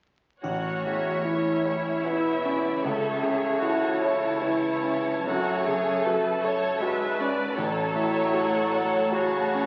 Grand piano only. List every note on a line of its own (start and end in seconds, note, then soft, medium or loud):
0.43 2.01 A1 soft
0.85 1.50 E2 soft
1.25 1.89 E4 soft
1.66 2.29 C#5 soft
2.06 2.69 E4 soft
2.45 2.84 C#4 soft
2.84 5.22 C#2 soft
3.23 3.85 C#3 soft
3.62 4.25 E4 soft
4.02 4.65 C#5 soft
4.42 5.10 E4 soft
4.83 5.26 C#4 soft
5.27 6.79 F#2 soft
5.67 6.28 C#3 soft
6.06 6.68 F#4 soft
6.45 7.05 C#5 soft
6.82 7.42 F#4 soft
7.20 7.57 C#4 soft
7.58 9.66 A1 medium
7.95 8.57 A2 soft
8.34 8.95 F#4 soft
8.73 9.37 C#5 soft
9.12 9.66 F#4 soft
9.55 9.66 C#4 soft